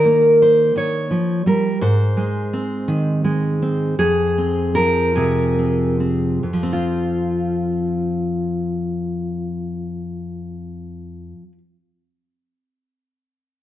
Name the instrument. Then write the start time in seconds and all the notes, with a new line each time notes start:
steel-string acoustic guitar
Already playing: D#3 A#4
0.05 A#3
0.42 C5
0.76 D#3 C#5
1.11 F3
1.46 G3 A#4
1.81 G#2 C5
2.17 G#3
2.53 C4
2.88 D#3
3.24 G#3
3.62 C4
3.99 F2 G#4
4.38 C4
4.75 F3 A#4
5.15 C3 G#4
5.59 C4
6.00 C4
6.43 F2
6.53 F3
6.63 C4
6.73 F4